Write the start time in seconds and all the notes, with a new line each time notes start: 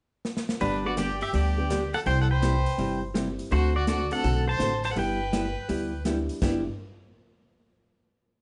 0.25 snare
0.37 snare
0.49 snare
0.61 G1 D3 G3 B3 D4 G4 B4, open hi-hat
0.85 G3 B3 D4 F#4 G4 D5
0.97 D3 G3 B3 D4 G4 D5, snare, closed hi-hat
1.21 G4 E5, open hi-hat
1.33 D2 D3 G3 B3 D4 G4 D5, open hi-hat
1.57 G3 B3 D4 G4
1.70 D3 G3 B3 D4 G4, snare, closed hi-hat
1.94 A4 F#5, open hi-hat
2.06 C2 C3 G3 C4 E4 G4 C5 G5, open hi-hat
2.21 A4 F#5
2.31 B4 C5 G5
2.42 C3 G3 C4 E4 G4, snare, closed hi-hat
2.66 open hi-hat
2.78 G1 C3 G3 C4 E4 G4, open hi-hat
3.14 C3 G3 C4 E4 G4, snare, closed hi-hat
3.39 open hi-hat
3.51 D2 D3 A3 C4 F#4 A4 C5, open hi-hat
3.76 F#4 D5
3.87 D3 A3 C4 F#4 A4 D5, snare, closed hi-hat
4.11 A3 C4 D4 F#4 A4 F#5, open hi-hat
4.24 B1 D3 A3 C4 F#4 A4, open hi-hat
4.48 C5 A5
4.59 A1 D3 A3 C4 F#4 A4, snare, closed hi-hat
4.84 C5 A5, open hi-hat
4.91 A4 F#5
4.96 G1 G3 B3 E4 G4 B4 G5, open hi-hat
5.33 G3 B3 E4 G4, snare, closed hi-hat
5.69 D2 G3 B3 E4 G4, open hi-hat
6.05 G3 B3 D4 E4 G4, snare, closed hi-hat
6.29 open hi-hat
6.42 G1 G3 B3 D4 E4 G4, kick, snare, crash